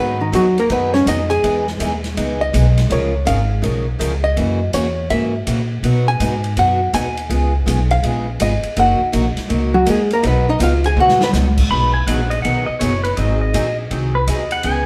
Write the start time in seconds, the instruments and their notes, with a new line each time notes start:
Already playing: upright bass G#2, steel-string acoustic guitar D#3 F#3 B3 D#4 G#4
0.00 hollow-body jazz guitar B3 B4
0.21 hollow-body jazz guitar D#3 D#4
0.32 upright bass D#2, steel-string acoustic guitar D#3 F#3 B3 D#4 G#4, hollow-body jazz guitar F#3 F#4, hi-hat pedal, ride
0.58 hollow-body jazz guitar A#3 A#4, ride
0.69 upright bass F#2, steel-string acoustic guitar D#3 F#3 B3 D#4 G#4, hollow-body jazz guitar B3 B4, ride
0.94 hollow-body jazz guitar C#4 C#5, snare
1.06 upright bass F2, steel-string acoustic guitar D#3 F#3 B3 D#4 G#4, hollow-body jazz guitar D#4 D#5, hi-hat pedal, ride
1.30 hollow-body jazz guitar G#4 G#5, ride
1.43 upright bass E2, steel-string acoustic guitar E3 G#3 B3 D#4 G#4, ride
1.67 snare
1.79 upright bass D#2, steel-string acoustic guitar E3 G#3 B3 D#4 G#4, hi-hat pedal, ride
2.04 snare, ride
2.17 upright bass C#2, steel-string acoustic guitar E3 G#3 B3 D#4 G#4, ride
2.41 hollow-body jazz guitar D#5
2.53 upright bass B1, steel-string acoustic guitar E3 G#3 B3 D#4 G#4, hi-hat pedal, ride
2.78 snare, ride
2.89 upright bass C#2, steel-string acoustic guitar C#3 F3 G#3 C#4 F4 A#4, hollow-body jazz guitar C#5, ride
3.25 upright bass G#1, steel-string acoustic guitar C#3 F3 G#3 C#4 F4 A#4, hollow-body jazz guitar F5, hi-hat pedal, ride
3.62 upright bass B1, steel-string acoustic guitar C#3 F3 G#3 C#4 F4 A#4, ride
3.99 upright bass C#2, steel-string acoustic guitar C#3 F3 G#3 C#4 F4 A#4, hi-hat pedal, ride
4.24 hollow-body jazz guitar D#5
4.37 upright bass F#2, steel-string acoustic guitar C#3 E3 A#3 C#4 F#4, ride
4.73 upright bass E2, steel-string acoustic guitar C#3 E3 A#3 C#4 F#4, hollow-body jazz guitar C#5, hi-hat pedal, ride
5.09 upright bass G#2, steel-string acoustic guitar C#3 E3 A#3 C#4 F#4, hollow-body jazz guitar E5, ride
5.47 upright bass A#2, steel-string acoustic guitar C#3 E3 A#3 C#4 F#4, hi-hat pedal, ride
5.83 upright bass B2, steel-string acoustic guitar B2 F#3 B3 D#4 F#4, ride
6.08 hollow-body jazz guitar G#5
6.20 upright bass G#2, steel-string acoustic guitar B2 F#3 B3 D#4 F#4, hi-hat pedal, ride
6.44 ride
6.57 upright bass F#2, steel-string acoustic guitar B2 F#3 B3 D#4 F#4, hollow-body jazz guitar F#5, ride
6.93 upright bass D#2, steel-string acoustic guitar B2 F#3 B3 D#4 F#4, hollow-body jazz guitar G#5, hi-hat pedal, ride
7.17 ride
7.29 upright bass C#2, steel-string acoustic guitar C#3 G#3 B3 F4 G#4, ride
7.66 upright bass B1, steel-string acoustic guitar C#3 G#3 B3 F4 G#4, hi-hat pedal, ride
7.91 hollow-body jazz guitar F5, ride
8.03 upright bass A#1, steel-string acoustic guitar C#3 G#3 B3 F4 G#4, ride
8.40 upright bass G#1, steel-string acoustic guitar C#3 G#3 B3 F4 G#4, hollow-body jazz guitar D#5, hi-hat pedal, ride
8.63 muted upright bass stroke, ride
8.76 upright bass F#1, steel-string acoustic guitar F#3 A#3 D#4 F#4, hollow-body jazz guitar F#5, ride
9.00 muted upright bass stroke
9.12 upright bass A#1, steel-string acoustic guitar F#3 A#3 D#4 F#4, hi-hat pedal, ride
9.37 muted upright bass stroke, snare, ride
9.48 upright bass C#2, steel-string acoustic guitar F#3 A#3 D#4 F#4, ride
9.74 hollow-body jazz guitar F#3 F#4
9.85 upright bass D#2, steel-string acoustic guitar F#3 A#3 D#4 F#4, hollow-body jazz guitar G#3, hi-hat pedal, ride
9.90 hollow-body jazz guitar G#4
10.11 hollow-body jazz guitar A#3 A#4, ride
10.22 upright bass B1, steel-string acoustic guitar B2 F#3 B3 D#4 F#4, ride
10.27 hollow-body jazz guitar B3 B4
10.49 hollow-body jazz guitar D#4 D#5
10.59 upright bass C#2, steel-string acoustic guitar B2 F#3 B3 D#4 F#4, hi-hat pedal, ride
10.63 hollow-body jazz guitar F4 F5
10.84 hollow-body jazz guitar G#4 G#5, ride
10.96 upright bass D#2, steel-string acoustic guitar B2 F#3 B3 D#4 F#4, high tom
11.00 hollow-body jazz guitar F#4 F#5
11.09 snare
11.21 hollow-body jazz guitar B3 B4, snare
11.33 upright bass C#2, steel-string acoustic guitar B2 F#3 B3 D#4 F#4, snare, hi-hat pedal
11.58 kick, crash
11.70 upright bass B1, steel-string acoustic guitar B2 D#3 F#3 B3 D#4 G#4, pedal steel guitar B5
11.94 pedal steel guitar G#5
12.07 upright bass A#1, steel-string acoustic guitar B2 D#3 F#3 B3 D#4 G#4, pedal steel guitar F#5, hi-hat pedal, ride
12.30 pedal steel guitar D#5, ride
12.42 upright bass B1, steel-string acoustic guitar B2 D#3 F#3 B3 D#4 G#4, pedal steel guitar F#5, ride
12.66 pedal steel guitar D#5, muted upright bass stroke
12.79 upright bass F#1, steel-string acoustic guitar B2 D#3 F#3 B3 D#4 G#4, pedal steel guitar C#5, hi-hat pedal, ride
13.04 pedal steel guitar B4, ride
13.17 upright bass G#1, steel-string acoustic guitar D#3 F#3 C4 D#4 G#4, pedal steel guitar D#5, ride
13.41 pedal steel guitar D#5
13.53 upright bass A#1, steel-string acoustic guitar D#3 F#3 C4 D#4 G#4, hi-hat pedal, ride
13.91 upright bass C2, steel-string acoustic guitar D#3 F#3 C4 D#4 G#4, ride
14.15 pedal steel guitar B4
14.27 upright bass D#2, steel-string acoustic guitar D#3 F#3 C4 D#4 G#4, pedal steel guitar D#5, hi-hat pedal, ride
14.51 pedal steel guitar F#5, ride
14.63 upright bass C#2, steel-string acoustic guitar C#3 E3 B3 C#4 G#4, pedal steel guitar G#5, ride